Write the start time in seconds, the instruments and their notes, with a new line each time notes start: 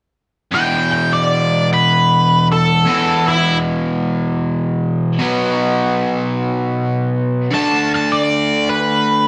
0.51 overdriven electric guitar E2 B2 E3, lead electric guitar G5
0.92 lead electric guitar G5
1.13 lead electric guitar D5
1.73 lead electric guitar B4
2.52 lead electric guitar A4
2.85 overdriven electric guitar E2 B2
2.90 overdriven electric guitar E3
3.28 lead electric guitar E4
5.19 overdriven electric guitar B2 F#3 B3
7.51 overdriven electric guitar D3 A3, lead electric guitar A5
7.55 overdriven electric guitar D4
7.95 lead electric guitar A5
8.12 lead electric guitar D5
8.69 lead electric guitar B4